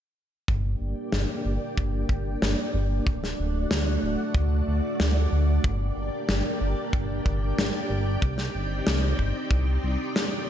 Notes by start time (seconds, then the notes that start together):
0.48 G1 A#3 D4 G4 D5 G5, kick
0.80 G1
1.12 G1, snare
1.45 G1
1.77 G1, kick
2.09 G1, kick
2.42 G1, snare
2.74 G1
3.06 D1 A3 F#4 D5 F#5, kick
3.24 snare
3.38 D1
3.71 D2, snare
4.03 D1
4.35 D2, kick
4.67 D2
5.00 D2, snare
5.32 D2
5.64 G1 A#3 D4 G4 G5, kick
5.96 G1
6.29 G1, snare
6.61 G1
6.93 G1, kick
7.26 G1, kick
7.58 G1, snare
7.90 G1
8.22 C2 C4 D#4, kick
8.38 snare
8.55 G1
8.87 C2, snare
9.19 G1, kick
9.51 C2, kick
9.84 C2
10.16 snare